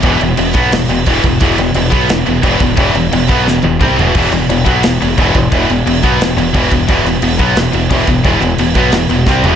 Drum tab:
CC |xxxxxxxx|xxxxxxxx|xxxx----|xxxxxxxx|
SD |----o---|----o---|----o---|----o---|
T1 |--------|--------|-----o--|--------|
T2 |--------|--------|------o-|--------|
FT |--------|--------|-------o|--------|
BD |o--o--oo|o--o--oo|o--o--o-|o--o--oo|

CC |xxxxxxxx|xxxxxxxx|xxxxxx--|
SD |----o---|----o---|----o-o-|
T1 |--------|--------|--------|
T2 |--------|--------|--------|
FT |--------|--------|-------o|
BD |o--o--oo|o--o--oo|o--o--o-|